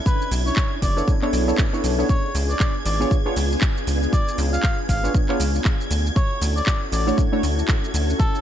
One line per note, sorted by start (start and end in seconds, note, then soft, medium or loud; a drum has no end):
0.00 2.05 C#4 medium
0.00 5.87 D4 medium
0.00 2.05 E4 medium
0.00 8.41 G#6 medium
0.06 5.87 G#4 medium
0.06 0.32 B4 loud
0.06 kick loud
0.06 shaker soft
0.22 shaker soft
0.31 0.51 B1 loud
0.31 open hi-hat loud
0.31 shaker medium
0.46 0.72 C#5 medium
0.46 shaker soft
0.56 kick loud
0.56 clap loud
0.56 shaker soft
0.82 1.02 F#1 medium
0.82 1.08 D5 medium
0.82 kick medium
0.82 open hi-hat loud
0.82 shaker medium
0.97 1.12 B3 medium
0.97 1.12 D4 medium
0.97 1.13 E4 medium
0.97 1.13 A4 medium
0.97 1.13 C#5 loud
0.97 shaker soft
1.08 kick loud
1.08 shaker soft
1.22 1.31 B3 loud
1.22 1.31 D4 medium
1.22 1.31 E4 medium
1.22 1.31 A4 medium
1.22 1.31 C#5 loud
1.22 clap soft
1.33 1.53 B1 medium
1.33 1.44 B3 medium
1.33 1.44 D4 medium
1.33 1.44 E4 medium
1.33 1.45 A4 medium
1.33 1.45 C#5 medium
1.33 open hi-hat loud
1.33 shaker medium
1.48 1.63 B3 medium
1.48 1.63 D4 medium
1.48 1.63 E4 medium
1.48 1.64 A4 medium
1.48 1.64 C#5 loud
1.48 shaker soft
1.58 kick loud
1.58 clap loud
1.58 shaker soft
1.73 1.95 B3 medium
1.73 1.95 D4 medium
1.73 1.95 E4 medium
1.73 1.95 A4 medium
1.73 1.95 C#5 loud
1.73 shaker soft
1.84 2.04 B1 medium
1.84 open hi-hat loud
1.84 shaker medium
1.99 2.07 B3 medium
1.99 2.08 D4 medium
1.99 2.08 E4 medium
1.99 2.08 A4 medium
1.99 2.08 C#5 loud
1.99 shaker soft
2.09 5.87 B3 medium
2.09 5.87 F4 medium
2.09 2.35 C#5 loud
2.09 kick loud
2.09 shaker soft
2.35 2.55 C#2 loud
2.35 open hi-hat loud
2.35 shaker medium
2.50 2.76 D5 medium
2.50 shaker soft
2.60 kick loud
2.60 clap loud
2.60 shaker soft
2.86 3.05 G#1 medium
2.86 3.12 D5 medium
2.86 open hi-hat loud
2.86 shaker medium
3.00 3.16 B3 medium
3.00 3.16 D4 medium
3.00 3.16 F4 medium
3.00 3.16 G#4 medium
3.00 3.16 C#5 loud
3.00 shaker soft
3.11 kick loud
3.11 shaker soft
3.26 3.35 B3 loud
3.26 3.35 D4 medium
3.26 3.35 F4 medium
3.26 3.35 G#4 medium
3.26 3.35 C#5 loud
3.36 3.56 C#2 medium
3.36 open hi-hat loud
3.36 shaker medium
3.52 shaker soft
3.61 kick loud
3.61 clap loud
3.61 shaker soft
3.77 shaker soft
3.87 4.07 C#2 medium
3.87 open hi-hat loud
3.87 shaker medium
4.03 shaker soft
4.13 4.39 D5 loud
4.13 kick loud
4.13 shaker soft
4.28 shaker soft
4.38 4.58 C#2 loud
4.38 open hi-hat loud
4.38 shaker medium
4.53 4.79 F5 loud
4.53 shaker soft
4.63 kick loud
4.63 clap loud
4.63 shaker soft
4.89 5.09 G#1 loud
4.89 5.15 F5 medium
4.89 kick medium
4.89 open hi-hat medium
4.89 shaker medium
5.04 5.19 B3 medium
5.04 5.19 D4 medium
5.04 5.19 F4 medium
5.04 5.19 G#4 medium
5.04 5.20 C#5 loud
5.04 shaker soft
5.14 kick loud
5.14 shaker soft
5.29 5.38 B3 loud
5.29 5.38 D4 medium
5.29 5.38 F4 medium
5.29 5.38 G#4 medium
5.29 5.38 C#5 loud
5.29 clap soft
5.40 5.60 C#2 medium
5.40 open hi-hat loud
5.40 shaker medium
5.55 shaker soft
5.65 kick loud
5.65 clap loud
5.65 shaker soft
5.81 shaker soft
5.91 6.11 D2 medium
5.91 8.41 C#4 medium
5.91 8.41 E4 medium
5.91 8.41 F#4 medium
5.91 8.41 A4 medium
5.91 open hi-hat loud
5.91 shaker medium
6.06 shaker soft
6.16 6.42 C#5 loud
6.16 kick loud
6.16 shaker soft
6.42 6.61 D2 loud
6.42 open hi-hat loud
6.42 shaker medium
6.56 6.82 D5 loud
6.56 shaker soft
6.66 kick loud
6.66 clap loud
6.66 shaker soft
6.92 7.12 A1 medium
6.92 7.18 D5 medium
6.92 open hi-hat medium
6.92 shaker medium
7.07 7.23 A3 medium
7.07 7.23 D4 medium
7.07 7.23 E4 medium
7.07 7.23 F#4 medium
7.07 7.23 C#5 loud
7.07 shaker soft
7.18 kick loud
7.18 shaker soft
7.32 7.41 A3 loud
7.32 7.41 D4 medium
7.32 7.41 E4 medium
7.32 7.42 F#4 medium
7.32 7.42 C#5 loud
7.43 7.63 D2 medium
7.43 open hi-hat medium
7.43 shaker medium
7.59 shaker soft
7.68 kick loud
7.68 clap loud
7.68 shaker soft
7.84 shaker soft
7.94 8.14 D2 medium
7.94 open hi-hat medium
7.94 shaker medium
8.10 shaker soft
8.20 8.41 A4 loud
8.20 kick loud
8.20 shaker soft
8.35 shaker soft